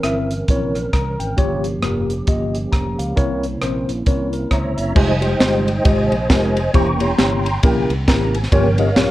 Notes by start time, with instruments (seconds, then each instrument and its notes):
Already playing: tine electric piano E3, tonewheel organ E3 C4 C#4 A#4
0.04 fingered electric bass G1, tine electric piano C4 E4 A#4 E5, cross-stick, closed hi-hat
0.31 closed hi-hat
0.48 fingered electric bass A#1, tine electric piano C4 E4 A#4 C#5, kick, closed hi-hat
0.75 cross-stick, closed hi-hat
0.93 fingered electric bass C2, tine electric piano A#5, kick, cross-stick, closed hi-hat
1.20 fingered electric bass G#1, tine electric piano G5, closed hi-hat
1.37 fingered electric bass G1, tine electric piano G2 A#3 F4 G4 C#5, tonewheel organ F3 A#3 G4, kick, closed hi-hat
1.64 closed hi-hat
1.82 fingered electric bass F1, tine electric piano A#3 F4 G4 A#4, cross-stick, closed hi-hat
2.10 closed hi-hat
2.27 fingered electric bass G1, tine electric piano A#3 F4 G4 D#5, kick, closed hi-hat
2.55 closed hi-hat
2.72 fingered electric bass F1, tine electric piano A#5, kick, cross-stick, closed hi-hat
2.99 fingered electric bass C#2, tine electric piano F5, closed hi-hat
3.16 fingered electric bass C2, tine electric piano C3 C4 E4 A#4 C#5, tonewheel organ C4 C#4 E4, kick, closed hi-hat
3.43 closed hi-hat
3.61 fingered electric bass A#1, tine electric piano C4 E4 A#4 C5, cross-stick, closed hi-hat
3.89 fingered electric bass A#1, closed hi-hat
4.06 fingered electric bass C2, tine electric piano C4 E4 A#4 C#5, kick, closed hi-hat
4.33 tine electric piano A#4, closed hi-hat
4.51 fingered electric bass C#2, tine electric piano C5, tonewheel organ C#5 E5 A#5, kick, cross-stick, closed hi-hat
4.77 fingered electric bass F#1, tine electric piano E5, closed hi-hat
4.95 fingered electric bass F1, tonewheel organ G3 G#3 D#4 C5 D#5 G#5, tine electric piano G#3 D#4 F4 G4 C5, kick, crash
5.21 tine electric piano G#3 D#4 F4 G4 C5, tonewheel organ C5 D#5 G5, ride
5.39 fingered electric bass G1, tine electric piano G#3 D#4 F4 G4 C5, snare, ride
5.66 tonewheel organ G3 G#3 D#4, ride
5.84 fingered electric bass G#1, tine electric piano G#3 D#4 F4 G4 D#5, tonewheel organ C5 D#5 G#5, kick, ride
6.12 fingered electric bass A#1, ride
6.29 fingered electric bass F1, tine electric piano G#3 D#4 F4 G4 A#4, tonewheel organ C5 D#5 G#5, kick, snare, ride
6.56 ride
6.73 fingered electric bass E1, tonewheel organ E3 A#3 C#4 G5 A#5 C#6, tine electric piano E3 A#3 C#4 E4 G4 C5, kick, ride
7.00 tine electric piano A#3 C#4 E4 G4 C#5, tonewheel organ G5 C6, ride
7.18 fingered electric bass G1, tine electric piano A#3 C#4 E4 G4 C#5, snare, ride
7.46 ride
7.63 fingered electric bass A#1, tine electric piano A#3 C#4 E4 G4 A#4, kick, ride
7.90 fingered electric bass C2, ride
8.07 fingered electric bass G#1, tine electric piano A#3 C#4 E4 G4 A#4, tonewheel organ A#5, kick, snare, ride
8.34 tonewheel organ G#5, ride
8.43 snare
8.52 fingered electric bass G1, tine electric piano G2 A#3 C#4 F4 G4 C#5, tonewheel organ F3 A#3 C#4 A#4 C#5 G5, kick, ride
8.78 tine electric piano A#3 C#4 F4 G4 D#5, tonewheel organ A#4 C#5 F5, ride
8.96 fingered electric bass A#1, tine electric piano A#3 C#4 F4 G4 C#5, snare, ride